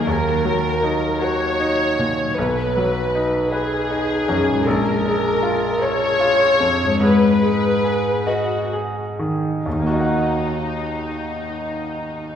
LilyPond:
<<
  \new Staff \with { instrumentName = "Violin section" } { \time 6/8 \key ees \minor \tempo 4. = 52 bes'4. des''4. | b'4. aes'4. | bes'4. des''4. | ces''4. ges'8 r4 |
ees'2. | }
  \new Staff \with { instrumentName = "Harp" } { \time 6/8 \key ees \minor ges'2.~ | ges'2. | r2. | r2. |
<ees bes ees' ges' ees'' ges''>2. | }
  \new Staff \with { instrumentName = "Harp" } { \clef bass \time 6/8 \key ees \minor <ees ges ees'>2. | <b, fis dis' dis''>2. | <bes, aes f' des''>2. | <aes, aes aes'>2. |
r2. | }
  \new Staff \with { instrumentName = "Grand piano" } { \time 6/8 \key ees \minor ees,8 ges8 ees'8 ges'8 ees'8 bes,8 | b,,8 fis8 dis'8 b'8 dis'8 fis,8 | bes,,8 aes8 f'8 des''8 f'8 f,8 | aes,8 aes8 aes'8 ees''8 aes'8 ees8 |
<ees, ees bes ges' ees'' ges''>2. | }
>>